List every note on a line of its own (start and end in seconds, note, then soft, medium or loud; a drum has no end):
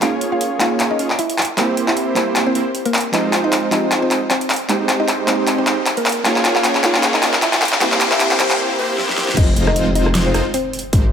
0.00 0.57 G#3 medium
0.00 0.58 A#3 medium
0.00 0.97 A#3 medium
0.00 0.97 C#4 medium
0.00 0.58 C#4 medium
0.00 0.59 D#4 medium
0.00 0.27 F4 medium
0.00 0.97 F4 medium
0.00 0.59 F4 medium
0.00 0.97 G#4 medium
0.00 0.97 C#5 loud
0.00 0.27 F5 medium
0.00 clap medium
0.00 closed hi-hat medium
0.21 closed hi-hat medium
0.32 0.56 F4 medium
0.32 0.56 F5 medium
0.41 closed hi-hat medium
0.58 1.36 G#3 medium
0.58 1.37 A#3 medium
0.58 1.37 C#4 medium
0.58 1.38 D#4 medium
0.58 0.86 F4 medium
0.58 0.86 F5 medium
0.58 clap medium
0.58 closed hi-hat medium
0.62 1.38 F4 medium
0.80 clap medium
0.80 closed hi-hat medium
0.91 1.15 D#4 medium
0.91 1.15 D#5 medium
0.99 1.08 A#3 medium
0.99 1.08 C#4 medium
0.99 1.08 F4 medium
0.99 1.08 G#4 medium
0.99 1.08 C#5 medium
0.99 closed hi-hat medium
1.10 clap medium
1.19 1.44 E4 medium
1.19 1.44 E5 medium
1.19 closed hi-hat medium
1.30 closed hi-hat medium
1.38 clap medium
1.38 closed hi-hat soft
1.42 closed hi-hat medium
1.45 closed hi-hat medium
1.57 1.68 G3 loud
1.57 1.68 A#3 medium
1.57 2.53 A#3 medium
1.57 2.53 C4 medium
1.57 1.68 C4 medium
1.57 2.53 E4 medium
1.57 1.68 E4 medium
1.57 2.53 G4 medium
1.57 1.68 G4 loud
1.57 2.53 C5 loud
1.57 clap medium
1.57 closed hi-hat medium
1.77 closed hi-hat medium
1.88 2.12 E4 medium
1.88 2.12 E5 medium
1.88 clap medium
1.97 closed hi-hat medium
2.14 3.11 G3 medium
2.14 3.11 A#3 medium
2.14 2.42 C4 medium
2.14 3.12 C4 medium
2.14 3.12 E4 medium
2.14 3.13 G4 medium
2.14 2.42 C5 loud
2.14 clap medium
2.14 closed hi-hat medium
2.36 clap medium
2.36 closed hi-hat medium
2.47 2.79 C4 medium
2.47 2.79 C5 loud
2.55 2.64 A#3 medium
2.55 2.64 C4 medium
2.55 2.64 E4 medium
2.55 2.64 G4 medium
2.55 2.64 C5 medium
2.55 closed hi-hat medium
2.75 closed hi-hat medium
2.85 3.10 A#3 medium
2.85 3.10 A#4 loud
2.85 closed hi-hat medium
2.94 clap medium
2.94 closed hi-hat soft
2.98 closed hi-hat medium
3.01 closed hi-hat medium
3.12 3.69 F3 medium
3.12 3.69 G#3 medium
3.12 4.09 G#3 medium
3.12 4.09 C4 medium
3.12 3.70 C4 medium
3.12 4.09 D#4 medium
3.12 3.39 D#4 medium
3.12 3.71 D#4 medium
3.12 4.09 F4 medium
3.12 4.09 C5 loud
3.12 3.39 D#5 medium
3.12 clap medium
3.12 closed hi-hat medium
3.12 riser medium
3.16 3.71 G4 medium
3.33 clap medium
3.33 closed hi-hat medium
3.44 3.68 D#4 medium
3.44 3.68 D#5 loud
3.53 clap medium
3.53 closed hi-hat medium
3.70 4.66 F3 medium
3.70 4.67 G#3 medium
3.70 4.67 C4 medium
3.70 3.97 D#4 medium
3.70 4.68 D#4 medium
3.70 4.68 G4 medium
3.70 3.97 D#5 loud
3.70 clap medium
3.70 closed hi-hat medium
3.92 clap medium
3.92 closed hi-hat medium
4.02 4.26 C4 medium
4.02 4.27 C5 medium
4.11 4.20 G#3 medium
4.11 4.20 C4 medium
4.11 4.20 D#4 medium
4.11 4.20 F4 medium
4.11 4.20 C5 medium
4.11 clap medium
4.11 closed hi-hat medium
4.30 4.56 C4 medium
4.30 4.56 C5 medium
4.30 clap medium
4.30 closed hi-hat medium
4.41 closed hi-hat medium
4.50 clap medium
4.50 closed hi-hat soft
4.54 closed hi-hat medium
4.56 closed hi-hat medium
4.68 4.79 G#3 loud
4.68 5.65 G#3 medium
4.68 4.79 A#3 medium
4.68 5.65 C4 medium
4.68 4.80 C4 medium
4.68 5.65 D#4 medium
4.68 4.80 D#4 medium
4.68 5.65 G4 medium
4.68 4.80 G4 loud
4.68 5.65 C5 loud
4.68 clap medium
4.68 closed hi-hat medium
4.89 clap medium
4.89 closed hi-hat medium
5.00 5.24 D#4 medium
5.00 5.24 D#5 loud
5.08 clap medium
5.08 closed hi-hat medium
5.26 6.22 G#3 medium
5.26 6.23 A#3 medium
5.26 5.53 C4 medium
5.26 6.23 C4 medium
5.26 6.24 D#4 medium
5.26 5.53 C5 medium
5.26 clap medium
5.26 closed hi-hat medium
5.30 6.24 G4 medium
5.47 clap medium
5.47 closed hi-hat medium
5.58 5.91 C4 medium
5.58 5.91 C5 loud
5.67 5.76 G#3 medium
5.67 5.76 C4 medium
5.67 5.76 D#4 medium
5.67 5.76 G4 medium
5.67 5.76 C5 medium
5.67 clap medium
5.67 closed hi-hat medium
5.86 clap medium
5.86 closed hi-hat medium
5.97 6.21 A#3 medium
5.97 6.21 A#4 medium
5.97 closed hi-hat medium
6.06 clap medium
6.06 closed hi-hat soft
6.09 closed hi-hat medium
6.12 closed hi-hat medium
6.23 6.81 G#3 medium
6.23 6.81 A#3 medium
6.23 7.21 A#3 loud
6.23 7.21 C#4 medium
6.23 6.82 C#4 medium
6.23 6.82 D#4 medium
6.23 7.21 F4 medium
6.23 6.51 F4 medium
6.23 6.83 F4 medium
6.23 7.21 G#4 medium
6.23 7.21 C#5 loud
6.23 6.51 F5 loud
6.23 clap medium
6.23 closed hi-hat medium
6.36 clap medium
6.45 clap medium
6.45 closed hi-hat medium
6.56 6.80 F4 medium
6.56 6.80 F5 loud
6.56 clap medium
6.64 clap loud
6.64 closed hi-hat medium
6.75 clap medium
6.82 7.60 G#3 medium
6.82 7.60 A#3 medium
6.82 7.61 C#4 medium
6.82 7.61 D#4 medium
6.82 7.09 F4 medium
6.82 7.62 F4 medium
6.82 7.09 F5 loud
6.82 clap medium
6.82 closed hi-hat medium
6.94 clap medium
7.03 clap loud
7.03 closed hi-hat medium
7.14 7.38 D#4 medium
7.14 7.38 D#5 medium
7.14 clap medium
7.23 7.32 A#3 medium
7.23 7.32 C#4 medium
7.23 7.32 F4 medium
7.23 7.32 G#4 medium
7.23 7.32 C#5 medium
7.23 clap medium
7.23 closed hi-hat medium
7.33 clap medium
7.42 7.68 E4 medium
7.42 7.68 E5 medium
7.42 clap medium
7.42 closed hi-hat medium
7.53 clap medium
7.53 closed hi-hat medium
7.62 clap loud
7.62 closed hi-hat soft
7.65 closed hi-hat medium
7.68 closed hi-hat medium
7.72 clap medium
7.80 7.91 G3 loud
7.80 7.91 A#3 medium
7.80 8.76 A#3 medium
7.80 8.76 C4 medium
7.80 7.91 C4 medium
7.80 8.76 E4 medium
7.80 7.92 E4 medium
7.80 8.76 G4 medium
7.80 7.92 G4 loud
7.80 8.76 C5 loud
7.80 clap loud
7.80 closed hi-hat medium
7.92 clap medium
8.01 clap loud
8.01 closed hi-hat medium
8.12 8.36 E4 medium
8.12 8.36 E5 loud
8.12 clap medium
8.20 clap loud
8.20 closed hi-hat medium
8.31 clap loud
8.38 8.58 G3 medium
8.38 8.59 A#3 medium
8.38 8.59 C4 medium
8.38 8.60 E4 medium
8.38 8.59 C5 loud
8.38 clap loud
8.38 closed hi-hat medium
8.42 8.60 G4 medium
8.50 clap loud
8.79 9.35 A#3 medium
8.79 9.35 C4 medium
8.79 9.35 E4 medium
8.79 9.35 G4 medium
8.79 9.35 C5 medium
8.98 snare medium
9.09 snare medium
9.18 snare medium
9.28 snare medium
9.37 10.33 F1 loud
9.37 10.32 C4 medium
9.37 9.62 D#4 medium
9.37 10.32 D#4 medium
9.37 10.32 F4 medium
9.37 9.62 D#5 loud
9.37 kick loud
9.37 closed hi-hat medium
9.37 crash loud
9.37 impact medium
9.56 closed hi-hat medium
9.67 9.92 D#4 medium
9.67 9.91 D#5 loud
9.67 cross-stick medium
9.76 closed hi-hat medium
9.95 10.21 D#4 medium
9.95 10.21 D#5 medium
9.95 closed hi-hat medium
10.06 cross-stick medium
10.15 snare loud
10.15 closed hi-hat medium
10.26 10.50 C4 medium
10.26 10.50 C5 medium
10.34 10.41 F1 loud
10.34 10.43 G#3 medium
10.34 10.43 C4 medium
10.34 10.43 D#4 medium
10.34 10.43 F4 medium
10.34 10.43 C5 medium
10.34 cross-stick medium
10.34 closed hi-hat medium
10.54 10.79 C4 medium
10.54 10.79 C5 loud
10.54 closed hi-hat medium
10.73 closed hi-hat medium
10.79 closed hi-hat medium
10.93 11.12 G#1 loud
10.93 11.12 G#3 loud
10.93 11.12 C4 medium
10.93 11.12 D#4 medium
10.93 11.12 G4 medium
10.93 11.12 C5 loud
10.93 kick loud
10.93 closed hi-hat medium